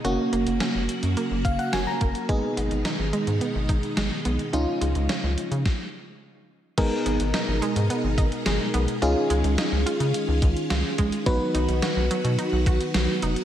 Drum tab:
CC |----------------|----------------|----------------|x---------------|
HH |x-xxx-xxx-xxx-xx|x-xxx-xxx-xxx-xx|x-xxx-xx--------|x-xxx-xxx-xxx-xx|
SD |----o-------o---|----o-------o---|----o---o-------|----o-------o---|
BD |----------o---o-|o---------o-----|--------o-------|o---------o-----|

CC |----------------|----------------|
HH |x-xxx-xxx-xxx-xx|x-xxx-xxx-xxx-xx|
SD |----o-------o---|----o-------o---|
BD |----------o---o-|o---------o-----|